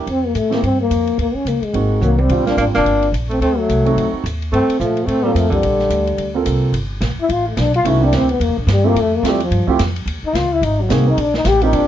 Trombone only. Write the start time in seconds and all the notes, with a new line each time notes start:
0.09 C4
0.26 A#3
0.37 A3
0.54 A#3
0.65 C4
0.81 A#3
1.21 A#3
1.35 C#4
1.48 A#3
1.64 G#3
2.04 A#3
2.21 C4
2.48 D4
2.59 D4
2.76 D4
3.32 C4
3.42 C4
3.58 A3
4.54 C4
4.81 A3
5.07 C4
5.24 A#3
5.37 A3
5.52 G3
7.21 E4
7.32 F4
7.48 A3
7.58 D4
7.76 F4
7.87 E4
8.05 D4
8.16 C4
8.30 B3
8.43 A#3
8.59 D3
8.72 G3
8.87 A#3
9.00 A3
9.17 A#3
9.29 G3
9.44 F3
10.26 D#4
10.36 F4
10.53 E4
10.64 D#4
10.81 F#3
10.93 A#3
11.08 D#4
11.20 D4
11.37 D#4
11.48 G4
11.63 D#4
11.75 D4